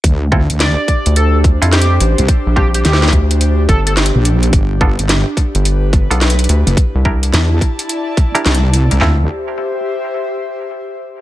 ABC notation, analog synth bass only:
X:1
M:4/4
L:1/16
Q:"Swing 16ths" 1/4=107
K:Dm
V:1 name="Analog synth bass" clef=bass
z6 z D,,4 F,,3 A,,, z | z B,,,3 z2 D,,4 G,,,3 z3 | z6 z G,,,4 =B,,,3 D,, z | z C,,3 z12 |
z16 |]